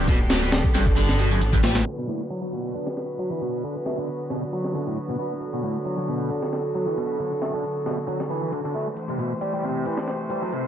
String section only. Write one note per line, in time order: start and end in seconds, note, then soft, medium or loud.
0.00 1.83 D3 medium
0.00 1.83 B3 medium
0.00 1.83 G4 medium
0.08 1.84 A4 medium
1.86 8.93 D3 medium
1.86 8.93 F#3 medium
1.86 8.93 B3 medium
1.86 8.93 F#4 medium
1.86 5.38 B4 medium
5.42 8.94 A4 medium
8.98 10.67 E3 medium
8.98 10.67 A3 medium
8.98 10.67 G4 medium
8.98 10.67 C5 medium